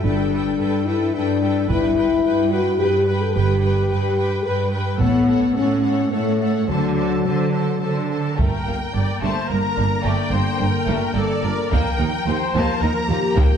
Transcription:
0.02 double bass section G1, cello section G2, french horn section D4, viola section A4, violin section B4 G5
0.32 viola section A4, violin section B4 G5
0.59 cello section G2, viola section A4, violin section B4 G5
0.86 french horn section E4, viola section A4, violin section B4 G5
1.14 cello section G2, french horn section D4, viola section A4, violin section B4 G5
1.42 viola section A4, violin section B4 G5
1.69 double bass section G1, cello section G2, french horn section E4, viola section B4, violin section B4 G5, taiko
1.97 viola section B4, violin section B4 G5
2.24 cello section G2, viola section B4, violin section B4 G5
2.51 french horn section F#4, viola section B4, violin section B4 G5
2.79 cello section G2, french horn section G4, viola section B4, violin section B4 G5
3.07 viola section B4, violin section B4 G5
3.22 french horn section A4
3.34 double bass section G1, cello section G2, french horn section G4, viola section B4, violin section B4 G5
3.62 viola section B4, violin section B4 G5
3.90 cello section G2, viola section B4, violin section B4 G5
4.17 viola section B4, violin section B4 G5
4.45 cello section G2, violin section B4 G5, french horn section B4, viola section B4
4.72 violin section B4 G5, viola section B4
5.00 double bass section A1, cello section A2, french horn section B3, viola section A4, violin section C#5 F#5, taiko
5.29 viola section A4, violin section C#5 F#5
5.55 cello section A2, french horn section C#4, viola section A4, violin section C#5 F#5
5.83 viola section A4, violin section C#5 F#5
6.11 cello section A2, french horn section A3, viola section A4, violin section C#5 F#5
6.40 viola section A4, violin section C#5 F#5
6.68 double bass section D2, cello section D3, french horn section F#3, viola section A4, violin section C5 A5
6.97 viola section A4, violin section C5 A5
7.25 cello section D3, viola section A4, violin section C5 A5
7.53 viola section A4, violin section C5 A5
7.81 cello section D3, viola section A4, violin section C5 A5
8.10 viola section A4, violin section C5 A5
8.37 double bass section G1, cello section G2, french horn section D3 A#3, violin section A3 A#4 G5, viola section A#4, taiko
8.66 double bass section G1, cello section G2, violin section A#3
8.92 double bass section G1, cello section G2, violin section D4, viola section D5
9.21 double bass section G1, cello section G2, violin section A3 A5, viola section C5
9.48 double bass section G1, cello section G2, violin section A#3 A#5, viola section A#4
9.76 double bass section G1, cello section G2, violin section D4
10.03 double bass section G1, cello section G2, violin section A3 G5, viola section D5
10.30 double bass section G1, cello section G2, violin section A#3, viola section C5
10.58 double bass section G1, cello section G2, violin section D4, viola section A#4
10.87 double bass section G1, cello section G2, violin section A3
11.15 double bass section G1, cello section G2, violin section A#3 D5, viola section A4
11.43 double bass section G1, cello section G2, violin section D4, viola section A#4
11.71 double bass section D#2, cello section D#2, french horn section F3 A#3, violin section A#3 A#4 G5, taiko
11.99 double bass section D#2, cello section D#2, violin section D#4
12.27 double bass section D#2, cello section D#2, violin section F4, viola section C5
12.54 double bass section D#2, cello section D#2, violin section A#3 A5, taiko
12.82 double bass section D#2, cello section D#2, violin section D#4 A#5, viola section A#4
13.09 double bass section D#2, cello section D#2, violin section F4, viola section G4
13.36 cello section D#2, double bass section D#2, violin section A#3 G5, taiko

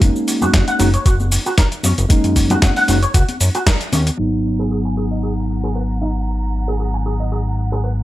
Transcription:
0.00 analog synth bass F#1, tine electric piano G#3 A#3 C#4 D#4, kick, closed hi-hat, shaker
0.16 shaker
0.28 open hi-hat, shaker
0.41 analog synth bass F#2, clean electric guitar F#4, high conga, low conga, shaker
0.53 analog synth bass F#2, clean electric guitar F#4, kick, snare, closed hi-hat, shaker
0.68 clean electric guitar F#5, closed hi-hat, shaker
0.79 analog synth bass F#1, tine electric piano G#3 A#3 C#4 D#4, clean electric guitar F#4, open hi-hat, shaker
0.94 clean electric guitar C#5, closed hi-hat, shaker
1.06 analog synth bass F#1, clean electric guitar F#4, kick, closed hi-hat, shaker
1.20 high conga, shaker
1.32 open hi-hat, shaker
1.46 clean electric guitar F#4, shaker
1.58 clean electric guitar A#4, kick, snare, closed hi-hat, shaker
1.72 closed hi-hat, shaker
1.83 analog synth bass F#2, clean electric guitar C#4, open hi-hat, high conga, shaker
1.98 analog synth bass F#1, closed hi-hat, shaker
2.09 analog synth bass F#2, tine electric piano G#3 A#3 C#4 D#4, kick, closed hi-hat, shaker
2.24 analog synth bass F#2, closed hi-hat, shaker
2.36 kick, open hi-hat, shaker
2.50 clean electric guitar F#4, closed hi-hat, high conga, low conga, shaker
2.62 analog synth bass F#2, clean electric guitar F#4, kick, snare, closed hi-hat, shaker
2.76 clean electric guitar F#5, open hi-hat, shaker
2.88 analog synth bass F#1, tine electric piano G#3 A#3 C#4 D#4, clean electric guitar F#4, snare, open hi-hat, shaker
3.03 clean electric guitar C#5, closed hi-hat, shaker
3.14 analog synth bass C#2, clean electric guitar F#4, kick, closed hi-hat, shaker
3.29 closed hi-hat, high conga, shaker
3.40 analog synth bass F#2, open hi-hat, shaker
3.55 clean electric guitar F#4, closed hi-hat, shaker
3.67 clean electric guitar A#4, kick, snare, closed hi-hat, shaker
3.81 closed hi-hat, shaker
3.92 analog synth bass D#2, clean electric guitar C#4, open hi-hat, high conga, shaker
4.07 closed hi-hat, shaker
4.17 analog synth bass G#1, tine electric piano F#3 B3 D#4, string section F#5 A#5
4.59 clean electric guitar G#4
4.71 clean electric guitar G#4
4.85 clean electric guitar G#5
4.97 clean electric guitar G#4
5.11 clean electric guitar D#5
5.23 clean electric guitar G#4
5.64 clean electric guitar G#4
5.75 clean electric guitar B4
6.01 clean electric guitar D#4
6.68 clean electric guitar G#4
6.80 clean electric guitar G#4
6.94 clean electric guitar G#5
7.06 clean electric guitar G#4
7.20 clean electric guitar D#5
7.32 clean electric guitar G#4
7.72 clean electric guitar G#4
7.84 clean electric guitar B4

